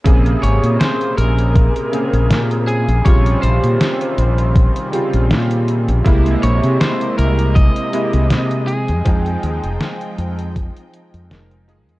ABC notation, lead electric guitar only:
X:1
M:4/4
L:1/8
Q:"Swing 16ths" 1/4=80
K:Bbdor
V:1 name="Lead electric guitar"
z d c B4 A | d c4 z3 | z d c B ^d3 A- | A3 z4 z |]